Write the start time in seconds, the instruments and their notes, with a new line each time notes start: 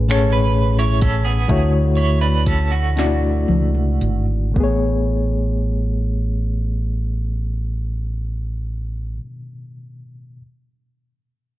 Already playing: fingered electric bass A1, reed electric piano A2 A3 C#4 G#4 B4
0.09 reed electric piano A2 A3 C#4 G#4 C#5, clean electric guitar C#4 A4, finger snap, closed hi-hat
0.33 clean electric guitar B4
0.79 clean electric guitar E4 C#5
1.01 clean electric guitar C#4 A4, kick, closed hi-hat
1.25 clean electric guitar B3 G#4
1.48 fingered electric bass D2, reed electric piano D3 A3 E4 F#4 C#5, kick, closed hi-hat
1.97 clean electric guitar E4 C#5
2.21 clean electric guitar D4 B4
2.46 clean electric guitar C#4 A4, kick, closed hi-hat
2.72 clean electric guitar A3 F#4
2.96 reed electric piano A3 D4 E4 F#4 D5, snare, closed hi-hat
3.48 fingered electric bass C#2, high tom
3.75 mid tom
4.01 fingered electric bass G#1, closed hi-hat, mid tom
4.51 reed electric piano A2 A3
4.56 fingered electric bass A1, reed electric piano B3, kick
4.60 reed electric piano G#4 C#5